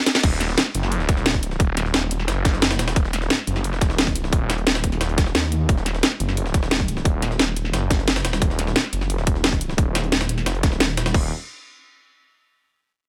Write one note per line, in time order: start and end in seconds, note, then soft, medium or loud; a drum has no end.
0.06 snare medium
0.06 closed hi-hat medium
0.06 closed hi-hat loud
0.06 ride bell medium
0.15 snare medium
0.15 snare loud
0.15 closed hi-hat medium
0.23 0.56 D#1 loud
0.23 kick loud
0.23 closed hi-hat medium
0.23 crash medium
0.32 snare soft
0.41 snare soft
0.41 closed hi-hat loud
0.41 closed hi-hat medium
0.49 snare medium
0.58 snare loud
0.58 closed hi-hat medium
0.66 snare soft
0.75 1.07 F#1 loud
0.75 closed hi-hat medium
0.83 snare soft
0.92 closed hi-hat medium
1.00 snare soft
1.09 1.58 D#1 loud
1.09 kick loud
1.09 snare soft
1.09 closed hi-hat medium
1.17 snare medium
1.26 snare loud
1.26 closed hi-hat medium
1.34 kick medium
1.34 closed hi-hat soft
1.43 closed hi-hat medium
1.51 snare soft
1.60 1.93 D#1 loud
1.60 kick loud
1.60 closed hi-hat medium
1.77 snare soft
1.77 closed hi-hat medium
1.77 closed hi-hat loud
1.85 snare soft
1.94 2.27 D#1 loud
1.94 snare loud
1.94 closed hi-hat medium
2.02 snare soft
2.11 closed hi-hat medium
2.20 snare soft
2.28 2.78 F#1 medium
2.28 snare loud
2.28 closed hi-hat medium
2.45 kick loud
2.45 snare soft
2.45 closed hi-hat medium
2.54 snare soft
2.62 snare loud
2.62 closed hi-hat medium
2.71 snare loud
2.71 closed hi-hat medium
2.79 2.95 D#1 loud
2.79 snare loud
2.79 closed hi-hat medium
2.88 snare loud
2.88 closed hi-hat medium
2.96 3.29 D#1 loud
2.96 kick loud
2.96 closed hi-hat medium
3.05 snare soft
3.13 snare soft
3.13 closed hi-hat medium
3.22 snare medium
3.30 snare loud
3.30 closed hi-hat medium
3.39 snare soft
3.47 3.80 F#1 medium
3.47 closed hi-hat medium
3.56 snare soft
3.64 closed hi-hat medium
3.73 snare soft
3.81 4.31 D#1 loud
3.81 kick loud
3.81 snare soft
3.81 closed hi-hat medium
3.90 snare medium
3.98 snare loud
3.98 closed hi-hat medium
4.07 kick medium
4.07 closed hi-hat soft
4.15 closed hi-hat medium
4.24 snare soft
4.33 4.65 D#1 loud
4.33 kick loud
4.33 closed hi-hat medium
4.50 snare loud
4.50 snare soft
4.50 closed hi-hat medium
4.58 closed hi-hat soft
4.67 4.99 D#1 loud
4.67 snare loud
4.67 closed hi-hat medium
4.75 snare loud
4.75 snare soft
4.75 closed hi-hat medium
4.84 kick medium
4.84 closed hi-hat soft
4.84 closed hi-hat medium
4.92 snare soft
4.92 closed hi-hat medium
5.01 5.33 D#1 loud
5.01 snare loud
5.01 closed hi-hat medium
5.09 closed hi-hat soft
5.18 kick loud
5.18 snare soft
5.18 closed hi-hat medium
5.26 snare soft
5.35 5.68 D#2 loud
5.35 snare loud
5.35 closed hi-hat medium
5.52 closed hi-hat medium
5.69 6.02 D#1 loud
5.69 kick loud
5.69 closed hi-hat medium
5.77 snare soft
5.86 snare soft
5.86 closed hi-hat medium
5.95 snare medium
6.03 snare loud
6.03 closed hi-hat medium
6.12 snare soft
6.20 6.53 F#1 medium
6.20 closed hi-hat medium
6.29 snare soft
6.37 closed hi-hat medium
6.46 snare soft
6.54 7.04 D#1 loud
6.54 kick loud
6.54 snare soft
6.54 closed hi-hat medium
6.63 snare medium
6.71 snare loud
6.71 closed hi-hat medium
6.80 kick medium
6.80 closed hi-hat soft
6.88 closed hi-hat medium
6.97 snare soft
7.05 7.38 D#1 loud
7.05 kick loud
7.05 closed hi-hat medium
7.22 snare soft
7.22 closed hi-hat medium
7.31 snare soft
7.39 7.72 D#1 loud
7.39 snare loud
7.39 closed hi-hat medium
7.48 snare soft
7.56 closed hi-hat medium
7.56 closed hi-hat loud
7.65 snare soft
7.73 8.23 F#1 loud
7.73 snare loud
7.73 closed hi-hat medium
7.91 kick loud
7.91 snare soft
7.91 closed hi-hat medium
7.99 snare soft
8.08 snare loud
8.08 closed hi-hat medium
8.16 snare loud
8.16 closed hi-hat medium
8.25 8.40 D#1 loud
8.25 snare loud
8.25 closed hi-hat medium
8.33 snare loud
8.33 closed hi-hat medium
8.42 8.74 D#1 loud
8.42 kick loud
8.42 closed hi-hat medium
8.50 snare soft
8.59 snare soft
8.59 closed hi-hat medium
8.67 snare medium
8.76 snare loud
8.76 closed hi-hat medium
8.84 snare soft
8.93 9.26 F#1 loud
8.93 closed hi-hat loud
8.93 closed hi-hat medium
9.01 snare soft
9.10 closed hi-hat medium
9.18 snare soft
9.27 9.77 D#1 loud
9.27 kick loud
9.27 closed hi-hat loud
9.27 closed hi-hat medium
9.35 snare soft
9.44 snare loud
9.44 closed hi-hat medium
9.52 kick medium
9.52 closed hi-hat soft
9.61 closed hi-hat medium
9.70 snare soft
9.78 10.11 D#1 loud
9.78 kick loud
9.78 closed hi-hat medium
9.95 snare loud
9.95 snare soft
9.95 closed hi-hat medium
9.95 closed hi-hat loud
10.04 closed hi-hat soft
10.12 10.45 D#1 loud
10.12 snare loud
10.12 closed hi-hat medium
10.21 snare loud
10.21 snare soft
10.21 closed hi-hat medium
10.29 closed hi-hat soft
10.29 closed hi-hat loud
10.38 snare soft
10.38 closed hi-hat medium
10.46 10.79 F1 loud
10.46 snare loud
10.46 closed hi-hat medium
10.55 closed hi-hat soft
10.63 kick loud
10.63 snare soft
10.63 closed hi-hat medium
10.63 closed hi-hat loud
10.72 snare soft
10.80 11.13 D#1 loud
10.80 snare loud
10.80 closed hi-hat medium
10.97 snare loud
10.97 closed hi-hat medium
11.06 snare loud
11.06 closed hi-hat medium
11.14 11.30 D#1 loud
11.14 kick loud
11.14 crash medium